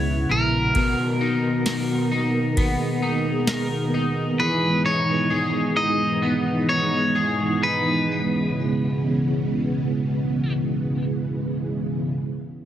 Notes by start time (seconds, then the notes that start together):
Already playing: C#2 C#3 G#3 B3 E4 B4 C#5
0.29 A#1 E4 A#4
0.75 B2 D#3 F#4 A#4, kick, ride
1.21 D#4
1.66 A#4, snare, ride, tambourine
2.12 D#4
2.57 B3 G#4, kick, ride
3.02 D#4
3.47 A#4, snare, ride, tambourine
3.94 D#4
4.39 E3 G#3 D#4 G#4 B4
4.84 D#4 C#5
5.30 G#4
5.76 D#4 D#5
6.22 B3
6.69 D#4 C#5
7.15 G#4
7.62 D#4 B4
8.11 C#3 B3